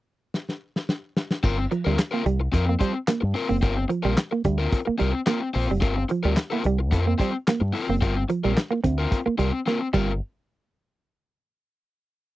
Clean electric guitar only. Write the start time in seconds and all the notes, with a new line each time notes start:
1.59 muted clean electric guitar stroke
1.72 F3
1.87 G3
2.00 muted clean electric guitar stroke
2.14 A#3
2.26 G3
2.55 muted clean electric guitar stroke
2.69 A#3
2.81 G3
3.08 A#3
3.35 muted clean electric guitar stroke
3.49 A#3
3.77 muted clean electric guitar stroke
3.89 F3
4.05 G3
4.18 muted clean electric guitar stroke
4.32 A#3
4.45 G3
4.73 muted clean electric guitar stroke
4.87 A#3
4.99 G3
5.28 A#3
5.56 muted clean electric guitar stroke
5.71 G3
5.98 muted clean electric guitar stroke
6.11 F3
6.25 G3
6.38 muted clean electric guitar stroke
6.52 A#3
6.66 G3
6.94 muted clean electric guitar stroke
7.07 A#3
7.21 G3
7.49 A#3
7.75 muted clean electric guitar stroke
7.90 A#3
8.17 muted clean electric guitar stroke
8.30 F3
8.44 G3
8.57 muted clean electric guitar stroke
8.71 A#3
8.84 C4
9.11 muted clean electric guitar stroke
9.26 A#3
9.39 G3
9.68 A#3
9.94 G3